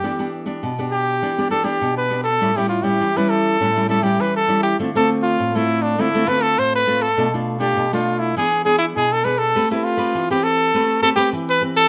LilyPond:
<<
  \new Staff \with { instrumentName = "Trumpet" } { \time 4/4 \key a \minor \tempo 4 = 101 g'8 r4 g'4 a'16 g'8 b'8 a'16~ | a'16 g'16 f'16 g'8 b'16 a'4 a'16 g'16 b'16 a'8 g'16~ | g'16 a'8 f'8 e'8 d'16 e'8 b'16 a'16 c''16 b'8 a'16~ | a'16 r8 g'8 f'8 e'16 gis'8 gis'16 e'16 gis'16 a'16 b'16 a'16~ |
a'16 e'16 f'8. g'16 a'4 a'16 g'8 b'8 a'16 | }
  \new Staff \with { instrumentName = "Nylon-string guitar" } { \time 4/4 \key a \minor << { <b d' g'>16 <b d' g'>8 <b d' g'>8 <b d' g'>8. <b d' g'>16 <b d' g'>16 <b d' g'>16 <b d' g'>8. <b d' g'>16 r16 | <g cis' e'>16 <g cis' e'>8 <g cis' e'>8 <g cis' e'>8. <g cis' e'>16 <g cis' e'>16 <g cis' e'>16 <g cis' e'>8. <g cis' e'>8 | <a c' f'>16 <a c' f'>4 <a c' f'>8. <a c' f'>16 <a c' f'>16 <a c' f'>4 <a c' f'>16 r16 | <a d' f'>16 <a d' f'>8 <a d' f'>8 <a d' f'>8. <b d' gis'>8 <b d' gis'>4 <b d' gis'>8 |
<c' g' b'>16 <c' g' b'>8 <c' g' b'>8 <c' g' b'>8. <c' g' b'>8 <c' g' b'>16 <c' g' b'>8. <c' g' b'>8 | } \\ { e4 b,4 e4 b,4 | a,4 e4 a,4 e4 | d4 a,4 d4 a,4 | b,4 b,4 e4 b,4 |
a4 e4 a4 e4 | } >> }
>>